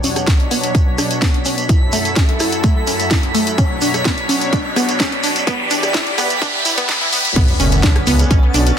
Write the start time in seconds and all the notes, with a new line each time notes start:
Already playing: B2 F#3 D4 C#5 B6, riser
0.04 C#4, open hi-hat, shekere
0.16 cross-stick, closed hi-hat, shekere
0.27 D4, kick, snare, closed hi-hat, shekere
0.40 closed hi-hat
0.51 B3, open hi-hat, shekere
0.63 closed hi-hat, shekere
0.75 C#4, kick, closed hi-hat, shekere
0.98 D4, cross-stick, open hi-hat, shekere
1.11 closed hi-hat, shekere
1.22 B3, kick, snare, closed hi-hat, shekere
1.34 closed hi-hat
1.45 C#4, open hi-hat, shekere
1.58 closed hi-hat, shekere
1.69 F#2 F#3 E4 A4, kick, closed hi-hat, shekere
1.92 A3, open hi-hat, shekere
2.05 closed hi-hat, shekere
2.16 C#4, kick, snare, closed hi-hat, shekere
2.29 closed hi-hat
2.40 E4, cross-stick, open hi-hat, shekere
2.52 closed hi-hat, shekere
2.64 A3, kick, closed hi-hat, shekere
2.87 C#4, open hi-hat, shekere
3.00 closed hi-hat, shekere
3.11 E4, kick, snare, closed hi-hat, shekere
3.23 closed hi-hat
3.35 A3, open hi-hat, shekere
3.47 closed hi-hat, shekere
3.58 B2 C#4 D4 C#5, kick, closed hi-hat, shekere
3.81 D4, open hi-hat, shekere
3.94 cross-stick, closed hi-hat, shekere
4.05 B3, kick, snare, closed hi-hat, shekere
4.18 closed hi-hat
4.29 C#4, open hi-hat, shekere
4.41 closed hi-hat, shekere
4.53 D4, kick, closed hi-hat, shekere
4.76 B3, cross-stick, open hi-hat, shekere
4.89 closed hi-hat, shekere
5.00 C#4, kick, snare, closed hi-hat, shekere
5.12 closed hi-hat
5.23 D4, open hi-hat, shekere
5.35 closed hi-hat, shekere
5.47 E2 E3 B3 G4 D5, kick, closed hi-hat, shekere
5.70 D4, open hi-hat, shekere
5.83 cross-stick, closed hi-hat, shekere
5.94 E4, kick, snare, closed hi-hat, shekere
6.07 closed hi-hat
6.18 B3, cross-stick, open hi-hat, shekere
6.30 closed hi-hat, shekere
6.42 D4, kick, closed hi-hat, shekere
6.65 E4, open hi-hat, shekere
6.77 B3, closed hi-hat, shekere
6.89 B3, kick, snare, closed hi-hat, shekere
7.01 E4, closed hi-hat
7.13 B3, open hi-hat, shekere
7.25 closed hi-hat, shekere
7.36 B1 D3 B3 C#4 A6, kick, closed hi-hat, crash, impact, shekere
7.48 closed hi-hat
7.60 F#1 C#4, open hi-hat, shekere
7.72 closed hi-hat, shekere
7.83 C#2 D4, kick, snare, closed hi-hat, shekere
7.96 cross-stick, closed hi-hat
8.07 C#2 B3, open hi-hat, shekere
8.19 closed hi-hat, shekere
8.31 B1 C#4, kick, closed hi-hat, shekere
8.54 B1 D4, open hi-hat, shekere
8.66 closed hi-hat, shekere